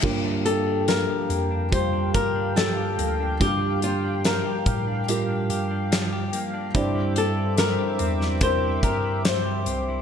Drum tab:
CC |x---------------|----------------|----------------|
HH |--x-x-x-x-x-x-x-|x-x-x-x-x-x-x-x-|x-x-x-x-x-x-x-x-|
SD |----o-------o---|----o-------o---|----o--o----o---|
BD |o-------o-o-----|o-----o---------|o-------o-o-----|